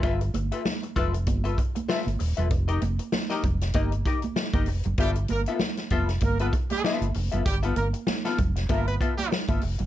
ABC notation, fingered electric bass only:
X:1
M:4/4
L:1/16
Q:"Swing 16ths" 1/4=97
K:Gmix
V:1 name="Fingered electric bass" clef=bass
G,,,2 G,,, z3 F,,,2 G,,,2 z3 G,,, _E,,, =E,,, | F,,,2 F,,, z3 F,,,2 G,,,2 z3 G,,, F,,, ^F,,, | G,,,2 G,,, z3 F,,,2 G,,,2 z3 G,,, F,,, ^F,,, | G,,,2 G,,, z3 F,,,2 G,,,2 z3 G,,, F,,, ^F,,, |]